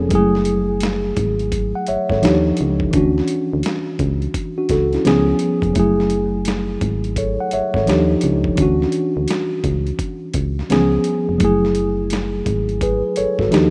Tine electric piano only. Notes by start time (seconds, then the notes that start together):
Already playing: F3 B3 C#4 G#4 A4
0.09 F#3 G#3
0.13 E4 G#4
0.18 A3
1.75 F#5
1.88 C#5 E5
2.11 A4 C#5
2.22 F3 D4 D#4 G4
2.91 E3 C#4
2.95 D4 F#4
4.58 D4 F#4
4.71 F#4 A4
4.93 C#4 E4
5.05 F3 B3 C#4 G#4
5.73 F#3 A3
5.78 E4 G#4
7.18 A4 C#5
7.40 F#5
7.53 C#5 E5
7.76 A4 C#5
7.87 F3 D4 D#4 G4
8.56 E3 C#4
8.60 D4 F#4
10.69 E3 B3 C#4 G#4
10.76 F3
11.38 F#3 A3
11.43 E4 G#4
12.83 G#4 B4
13.17 A4 C#5
13.40 F#4 A4
13.51 F3 D4 D#4 G4